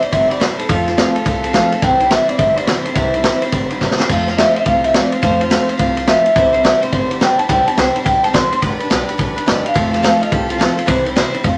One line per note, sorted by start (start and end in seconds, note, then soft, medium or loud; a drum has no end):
0.00 0.10 G3 soft
0.00 0.12 C4 medium
0.00 0.12 E4 soft
0.00 0.12 C5 medium
0.00 0.12 D5 medium
0.00 muted upright bass stroke medium
0.00 ride medium
0.12 0.45 G1 medium
0.12 0.30 G3 medium
0.12 0.30 C4 medium
0.12 0.29 E4 medium
0.12 0.28 C5 medium
0.12 0.30 E5 loud
0.12 kick loud
0.12 ride medium
0.29 0.39 G3 soft
0.29 0.40 C4 soft
0.29 0.40 E4 soft
0.29 0.40 C5 soft
0.29 0.40 D5 medium
0.29 ride medium
0.39 0.58 C3 medium
0.39 0.58 E3 medium
0.39 0.59 G3 medium
0.39 0.59 C4 medium
0.39 0.58 E4 medium
0.39 0.58 C5 medium
0.39 0.57 C5 medium
0.39 snare loud
0.39 ride medium
0.58 0.69 G3 soft
0.58 0.69 C4 soft
0.58 0.69 E4 medium
0.58 0.69 A4 medium
0.58 0.69 C5 medium
0.58 muted upright bass stroke medium
0.58 ride medium
0.69 1.02 F2 medium
0.69 0.87 F3 medium
0.69 0.87 A3 medium
0.69 0.88 C4 medium
0.69 1.24 F4 loud
0.69 0.87 F4 medium
0.69 0.85 A4 loud
0.69 kick loud
0.69 ride medium
0.86 0.97 C4 soft
0.86 0.98 F4 soft
0.86 0.97 A4 medium
0.86 snare soft
0.86 ride medium
0.97 1.16 F3 medium
0.97 1.16 A3 medium
0.97 1.16 C4 medium
0.97 1.16 F4 medium
0.97 1.14 A4 medium
0.97 snare loud
0.97 ride medium
1.15 1.25 C4 soft
1.15 1.26 F4 medium
1.15 1.26 A4 medium
1.15 muted upright bass stroke medium
1.15 ride medium
1.25 1.58 C2 medium
1.25 1.44 A3 medium
1.25 1.44 C4 medium
1.25 1.43 F4 medium
1.25 1.42 A4 medium
1.25 kick loud
1.25 ride medium
1.43 1.53 C4 medium
1.43 1.54 F4 medium
1.43 1.54 A4 medium
1.43 ride medium
1.53 1.72 F3 medium
1.53 1.72 A3 medium
1.53 1.72 C4 medium
1.53 1.72 F4 medium
1.53 1.71 A4 loud
1.53 snare loud
1.53 ride medium
1.72 1.82 C4 medium
1.72 1.83 F4 medium
1.72 1.82 A4 medium
1.72 muted upright bass stroke medium
1.72 ride medium
1.82 2.15 C2 medium
1.82 2.00 C3 medium
1.82 2.01 E3 medium
1.82 2.01 G3 medium
1.82 2.01 C4 medium
1.82 2.00 E4 medium
1.82 1.98 C5 loud
1.82 2.11 G5 loud
1.82 kick loud
1.82 ride medium
2.00 2.11 G3 medium
2.00 2.11 C4 medium
2.00 2.11 E4 medium
2.00 2.10 C5 medium
2.00 ride medium
2.11 2.29 C3 medium
2.11 2.29 E3 medium
2.11 2.30 G3 medium
2.11 2.29 C4 medium
2.11 2.28 E4 loud
2.11 2.27 C5 medium
2.11 2.29 E5 medium
2.11 snare loud
2.11 ride medium
2.28 2.37 G3 soft
2.28 2.39 C4 medium
2.28 2.40 E4 medium
2.28 2.39 C5 medium
2.28 2.37 D5 medium
2.28 muted upright bass stroke medium
2.28 ride medium
2.38 2.72 G1 medium
2.38 2.57 G3 medium
2.38 2.57 C4 medium
2.38 2.56 E4 medium
2.38 2.55 C5 medium
2.38 2.55 E5 medium
2.38 kick loud
2.38 ride medium
2.56 2.67 G3 soft
2.56 2.67 C4 soft
2.56 2.68 E4 medium
2.56 2.67 C5 medium
2.56 2.67 D5 medium
2.56 ride medium
2.67 2.86 C3 medium
2.67 2.86 E3 medium
2.67 2.86 G3 medium
2.67 2.86 C4 medium
2.67 2.85 E4 medium
2.67 2.84 C5 loud
2.67 2.84 C5 medium
2.67 snare loud
2.67 ride medium
2.84 2.96 C4 soft
2.84 2.96 E4 soft
2.84 2.95 A4 medium
2.84 2.95 C5 medium
2.84 muted upright bass stroke medium
2.84 ride medium
2.88 2.96 G3 soft
2.94 3.28 C2 medium
2.94 3.14 C3 medium
2.94 3.14 E3 medium
2.94 3.15 G3 medium
2.94 3.15 C4 medium
2.94 3.50 E4 loud
2.94 kick loud
2.94 ride medium
2.98 3.14 E4 medium
2.98 3.13 C5 medium
3.14 3.24 G3 soft
3.14 3.25 C4 medium
3.14 3.25 E4 medium
3.14 3.24 C5 medium
3.14 ride medium
3.24 3.42 C3 medium
3.24 3.43 E3 medium
3.24 3.43 G3 medium
3.24 3.43 C4 medium
3.24 3.42 E4 medium
3.24 3.41 C5 loud
3.24 snare loud
3.24 ride medium
3.42 3.51 G3 medium
3.42 3.52 C4 medium
3.42 3.53 E4 medium
3.42 3.52 C5 medium
3.42 muted upright bass stroke medium
3.42 ride medium
3.52 3.85 G1 medium
3.52 3.71 G3 medium
3.52 3.71 C4 medium
3.52 3.71 E4 medium
3.52 3.70 C5 medium
3.52 kick loud
3.52 ride medium
3.70 3.80 G3 soft
3.70 3.81 C4 medium
3.70 3.82 E4 medium
3.70 3.81 C5 medium
3.70 ride medium
3.81 3.99 C3 medium
3.81 3.99 E3 medium
3.81 3.99 G3 medium
3.81 4.00 C4 medium
3.81 3.99 E4 medium
3.81 3.98 C5 medium
3.81 kick medium
3.81 snare medium
3.91 snare medium
3.99 4.10 G3 soft
3.99 4.10 C4 medium
3.99 4.10 E4 medium
3.99 4.09 C5 medium
3.99 muted upright bass stroke medium
3.99 snare loud
4.09 4.42 F2 medium
4.09 4.28 F3 medium
4.09 4.28 A3 medium
4.09 4.28 C4 loud
4.09 4.28 F4 loud
4.09 4.26 C5 loud
4.09 kick loud
4.09 crash medium
4.09 ride medium
4.27 4.39 C4 medium
4.27 4.38 F4 medium
4.27 4.38 C5 medium
4.27 snare soft
4.27 ride medium
4.37 4.56 F3 medium
4.37 4.57 A3 medium
4.37 4.57 C4 medium
4.37 4.57 F4 medium
4.37 4.56 C5 medium
4.37 4.54 E5 loud
4.37 snare loud
4.37 ride medium
4.55 4.67 F4 soft
4.55 4.67 C5 medium
4.55 4.83 F5 loud
4.55 muted upright bass stroke medium
4.55 ride medium
4.59 4.65 C4 soft
4.65 4.99 C2 medium
4.65 4.84 A3 medium
4.65 4.84 C4 medium
4.65 4.85 F4 medium
4.65 4.83 C5 medium
4.65 kick loud
4.65 ride medium
4.84 4.95 C4 soft
4.84 4.95 F4 medium
4.84 4.94 C5 medium
4.84 4.94 E5 medium
4.84 ride medium
4.94 5.13 F3 medium
4.94 5.13 A3 medium
4.94 5.13 C4 medium
4.94 5.13 F4 medium
4.94 5.11 C5 medium
4.94 5.12 D5 medium
4.94 snare loud
4.94 ride medium
5.12 5.22 C4 soft
5.12 5.23 F4 medium
5.12 5.21 C5 medium
5.12 5.22 C5 medium
5.12 muted upright bass stroke medium
5.12 ride medium
5.22 5.55 F2 medium
5.22 5.40 F3 medium
5.22 5.41 A3 loud
5.22 5.41 C4 medium
5.22 5.41 F4 medium
5.22 5.77 C5 loud
5.22 5.39 C5 loud
5.22 kick loud
5.22 ride medium
5.40 5.50 C4 soft
5.40 5.50 F4 medium
5.40 5.51 C5 medium
5.40 ride medium
5.50 5.69 F3 medium
5.50 5.69 A3 medium
5.50 5.69 C4 medium
5.50 5.69 F4 loud
5.50 5.67 C5 medium
5.50 snare loud
5.50 ride medium
5.69 5.78 C4 medium
5.69 5.78 F4 medium
5.69 5.79 C5 medium
5.69 muted upright bass stroke medium
5.69 ride medium
5.77 6.12 C2 medium
5.77 5.97 A3 medium
5.77 5.97 C4 medium
5.77 5.97 F4 medium
5.77 5.95 C5 medium
5.77 kick loud
5.77 ride medium
5.96 6.07 C4 medium
5.96 6.08 F4 medium
5.96 6.07 C5 medium
5.96 ride medium
6.07 6.26 F3 medium
6.07 6.26 A3 medium
6.07 6.26 C4 medium
6.07 6.25 F4 medium
6.07 6.23 C5 medium
6.07 6.63 E5 loud
6.07 snare loud
6.07 ride medium
6.25 6.36 C4 soft
6.25 6.36 F4 medium
6.25 6.35 C5 medium
6.25 muted upright bass stroke medium
6.25 ride medium
6.35 6.68 C2 medium
6.35 6.54 C3 medium
6.35 6.54 E3 medium
6.35 6.54 G3 medium
6.35 6.54 C4 medium
6.35 6.53 E4 loud
6.35 6.52 C5 loud
6.35 kick loud
6.35 ride medium
6.53 6.63 G3 medium
6.53 6.64 C4 medium
6.53 6.64 E4 medium
6.53 6.64 C5 medium
6.53 ride medium
6.63 6.82 C3 medium
6.63 6.82 E3 medium
6.63 6.82 G3 medium
6.63 6.82 C4 medium
6.63 6.81 E4 loud
6.63 6.80 C5 loud
6.63 6.82 E5 medium
6.63 snare loud
6.63 ride medium
6.81 6.91 G3 soft
6.81 6.92 C4 medium
6.81 6.93 E4 medium
6.81 6.92 C5 medium
6.81 muted upright bass stroke medium
6.81 ride medium
6.92 7.25 G1 medium
6.92 7.10 G3 medium
6.92 7.11 C4 medium
6.92 7.10 E4 medium
6.92 7.10 C5 loud
6.92 7.09 C5 medium
6.92 kick loud
6.92 ride medium
7.10 7.20 G3 medium
7.10 7.21 C4 soft
7.10 7.21 E4 medium
7.10 7.21 C5 medium
7.10 ride medium
7.20 7.39 C3 medium
7.20 7.39 E3 medium
7.20 7.39 G3 medium
7.20 7.39 C4 medium
7.20 7.38 E4 medium
7.20 7.37 C5 medium
7.20 7.38 G5 loud
7.20 snare loud
7.20 ride medium
7.38 7.48 G3 soft
7.38 7.49 C4 soft
7.38 7.49 E4 medium
7.38 7.49 C5 medium
7.38 7.48 A5 medium
7.38 muted upright bass stroke medium
7.38 ride medium
7.49 7.62 C2 loud
7.49 7.67 C3 medium
7.49 7.67 E3 medium
7.49 7.68 G3 medium
7.49 7.67 C4 medium
7.49 7.66 E4 medium
7.49 7.65 C5 loud
7.49 7.66 G5 loud
7.49 kick loud
7.49 ride medium
7.66 7.77 G3 soft
7.66 7.77 C4 medium
7.66 7.78 E4 medium
7.66 7.77 C5 medium
7.66 7.78 A5 medium
7.66 muted upright bass stroke medium
7.66 ride medium
7.77 7.93 C2 medium
7.77 7.95 C3 medium
7.77 7.96 E3 medium
7.77 7.96 G3 medium
7.77 7.95 C4 medium
7.77 7.95 E4 medium
7.77 7.93 C5 loud
7.77 7.96 G5 loud
7.77 snare loud
7.77 ride medium
7.94 8.03 G3 soft
7.94 8.04 C4 soft
7.94 8.05 E4 medium
7.94 8.05 C5 medium
7.94 8.05 A5 loud
7.94 muted upright bass stroke medium
7.94 ride medium
8.04 8.21 B1 medium
8.04 8.23 G3 medium
8.04 8.24 C4 medium
8.04 8.23 E4 medium
8.04 8.22 C5 medium
8.04 8.23 G5 loud
8.04 kick loud
8.04 ride medium
8.23 8.33 G3 soft
8.23 8.33 C4 medium
8.23 8.34 E4 medium
8.23 8.34 C5 medium
8.23 8.34 A5 medium
8.23 muted upright bass stroke medium
8.23 ride medium
8.33 8.50 A1 medium
8.33 8.52 C3 medium
8.33 8.52 E3 medium
8.33 8.52 G3 medium
8.33 8.52 C4 medium
8.33 8.51 E4 medium
8.33 8.50 C5 medium
8.33 8.62 C6 loud
8.33 kick medium
8.33 snare loud
8.33 ride medium
8.51 8.61 G3 soft
8.51 8.62 C4 soft
8.51 8.62 E4 soft
8.51 8.62 C5 medium
8.51 muted upright bass stroke medium
8.51 ride medium
8.62 8.75 G1 medium
8.62 8.80 G3 medium
8.62 8.81 D4 medium
8.62 8.80 G4 medium
8.62 8.78 B4 medium
8.62 kick loud
8.62 ride medium
8.79 8.90 D4 medium
8.79 8.91 G4 medium
8.79 8.90 B4 medium
8.79 muted upright bass stroke medium
8.79 ride medium
8.90 9.06 B1 medium
8.90 9.08 G3 loud
8.90 9.09 D4 loud
8.90 9.09 G4 loud
8.90 9.07 B4 loud
8.90 snare loud
8.90 ride medium
9.08 9.18 D4 soft
9.08 9.19 G4 medium
9.08 9.19 B4 medium
9.08 muted upright bass stroke medium
9.08 ride medium
9.18 9.35 A1 medium
9.18 9.36 G3 medium
9.18 9.37 D4 medium
9.18 9.37 G4 medium
9.18 9.35 B4 medium
9.18 kick loud
9.18 ride medium
9.36 9.46 D4 medium
9.36 9.47 G4 soft
9.36 9.47 B4 medium
9.36 muted upright bass stroke medium
9.36 ride medium
9.46 9.63 G1 medium
9.46 9.65 G3 medium
9.46 9.65 D4 medium
9.46 9.65 G4 medium
9.46 9.63 B4 medium
9.46 9.65 D#5 loud
9.46 snare loud
9.46 ride medium
9.64 9.75 D4 soft
9.64 9.75 G4 soft
9.64 9.75 B4 medium
9.64 10.02 F5 loud
9.64 muted upright bass stroke medium
9.64 ride medium
9.74 10.08 F1 medium
9.74 9.93 F3 medium
9.74 9.93 A3 medium
9.74 9.93 C4 medium
9.74 9.92 F4 loud
9.74 9.90 A4 medium
9.74 kick loud
9.74 ride medium
9.91 10.02 C4 soft
9.91 10.03 F4 medium
9.91 10.03 A4 medium
9.91 snare soft
9.91 ride medium
10.02 10.21 F3 medium
10.02 10.22 A3 medium
10.02 10.22 C4 loud
10.02 10.21 F4 loud
10.02 10.19 A4 loud
10.02 10.21 F5 medium
10.02 snare loud
10.02 ride medium
10.20 10.30 C4 soft
10.20 10.31 F4 medium
10.20 10.31 A4 medium
10.20 10.31 D#5 medium
10.20 muted upright bass stroke medium
10.20 ride medium
10.30 10.65 C2 medium
10.30 10.49 A3 medium
10.30 10.50 C4 medium
10.30 10.49 F4 medium
10.30 10.49 G4 medium
10.30 10.48 A4 medium
10.30 kick loud
10.30 ride medium
10.49 10.59 C4 soft
10.49 10.87 F4 loud
10.49 10.59 F4 medium
10.49 10.60 A4 medium
10.49 ride medium
10.58 10.77 F3 medium
10.58 10.78 A3 medium
10.58 10.78 C4 medium
10.58 10.77 F4 medium
10.58 10.75 A4 medium
10.58 snare loud
10.58 ride medium
10.76 10.86 C4 soft
10.76 10.88 F4 medium
10.76 10.87 A4 medium
10.76 muted upright bass stroke medium
10.76 ride medium
10.86 11.21 C2 medium
10.86 11.05 C3 medium
10.86 11.06 E3 medium
10.86 11.06 G3 loud
10.86 11.06 C4 loud
10.86 11.05 E4 loud
10.86 11.04 C5 loud
10.86 kick loud
10.86 ride medium
11.05 11.15 G3 medium
11.05 11.15 C4 medium
11.05 11.16 E4 medium
11.05 11.16 C5 medium
11.05 ride medium
11.16 11.34 C3 loud
11.16 11.34 E3 loud
11.16 11.35 G3 loud
11.16 11.33 C4 loud
11.16 11.33 E4 loud
11.16 11.31 C5 loud
11.16 snare loud
11.16 ride medium
11.33 11.43 G3 medium
11.33 11.44 C4 medium
11.33 11.44 E4 medium
11.33 11.44 C5 medium
11.33 muted upright bass stroke medium
11.33 ride medium
11.43 11.58 F2 loud
11.43 11.58 A3 medium
11.43 11.58 C4 medium
11.43 11.58 F4 medium
11.43 11.58 C5 medium
11.43 kick loud
11.43 ride medium